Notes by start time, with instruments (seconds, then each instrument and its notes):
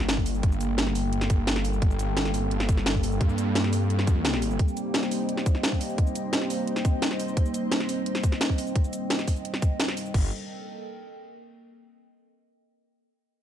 Already playing: detuned saw bass G1, analog synth pad G3 A#3 D4 A4, ambient pad A#3 G5, impact
0.09 snare, closed hi-hat
0.17 kick
0.26 open hi-hat, shaker
0.35 shaker
0.43 detuned saw bass G1, kick, closed hi-hat
0.52 shaker
0.61 closed hi-hat, shaker
0.78 snare, closed hi-hat
0.87 snare
0.95 open hi-hat, shaker
1.13 closed hi-hat
1.21 snare
1.30 kick, closed hi-hat, shaker
1.47 snare, closed hi-hat
1.56 snare
1.65 open hi-hat, shaker
1.73 shaker
1.82 detuned saw bass G1, analog synth pad C4, kick, closed hi-hat
1.91 shaker
1.99 closed hi-hat, shaker
2.17 snare, closed hi-hat
2.25 snare
2.34 open hi-hat, shaker
2.51 closed hi-hat
2.60 snare
2.69 kick, closed hi-hat, shaker
2.77 snare
2.86 snare, closed hi-hat
2.95 kick
3.03 open hi-hat, shaker
3.12 shaker
3.21 detuned saw bass G2, kick, closed hi-hat
3.29 shaker
3.38 closed hi-hat, shaker
3.55 snare, closed hi-hat
3.64 snare
3.73 open hi-hat, shaker
3.90 closed hi-hat
3.99 snare
4.07 kick, closed hi-hat, shaker
4.25 snare, closed hi-hat
4.33 snare
4.42 open hi-hat, shaker
4.51 shaker
4.59 ambient pad C4, analog synth pad D#4 C5, kick, closed hi-hat
4.68 shaker
4.77 ambient pad D#5, closed hi-hat, shaker
4.94 snare, closed hi-hat
5.03 snare
5.11 open hi-hat, shaker
5.29 closed hi-hat
5.37 snare
5.46 kick, closed hi-hat, shaker
5.55 snare
5.63 snare, closed hi-hat
5.72 kick
5.81 open hi-hat, shaker
5.89 shaker
5.98 kick, closed hi-hat
6.07 shaker
6.15 closed hi-hat, shaker
6.33 snare, closed hi-hat
6.42 snare
6.50 open hi-hat, shaker
6.67 closed hi-hat
6.76 snare
6.85 kick, closed hi-hat, shaker
7.02 snare, closed hi-hat
7.11 snare
7.20 open hi-hat, shaker
7.28 shaker
7.37 kick, closed hi-hat
7.46 shaker
7.54 closed hi-hat, shaker
7.72 snare, closed hi-hat
7.80 snare
7.89 open hi-hat, shaker
8.06 closed hi-hat
8.15 snare
8.24 kick, closed hi-hat, shaker
8.32 snare
8.41 snare, closed hi-hat
8.50 kick
8.58 open hi-hat, shaker
8.67 shaker
8.76 kick, closed hi-hat
8.84 shaker
8.93 closed hi-hat, shaker
9.10 snare, closed hi-hat
9.19 snare
9.28 kick, open hi-hat, shaker
9.36 shaker
9.45 closed hi-hat
9.54 snare
9.62 kick, closed hi-hat, shaker
9.80 snare, closed hi-hat
9.88 snare
9.97 open hi-hat, shaker
10.06 shaker
10.14 detuned saw bass G1, ambient pad A4, kick, crash
10.19 ambient pad A#4
10.25 ambient pad G5